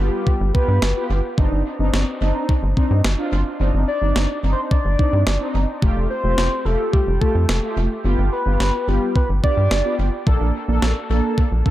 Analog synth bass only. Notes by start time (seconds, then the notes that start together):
0.41 G1
0.68 G2
0.82 G1
1.10 G1
1.38 G1
1.52 G1
1.79 G1
1.93 G1
2.21 G1
2.63 G1
2.91 G2
3.05 G1
3.32 G1
3.60 G1
3.74 G1
4.02 G1
4.16 G1
4.43 G1
4.85 G1
5.13 G2
5.27 G1
5.55 G1
5.82 F1
5.96 F1
6.24 F1
6.38 F1
6.65 F1
7.07 F1
7.35 F2
7.49 F1
7.77 F1
8.05 G1
8.18 G1
8.46 G1
8.60 G1
8.88 G1
9.29 G1
9.57 G2
9.71 G1
9.99 G1
10.27 A#1
10.41 A#1
10.68 A#1
10.82 A#1
11.10 A#1
11.52 A#1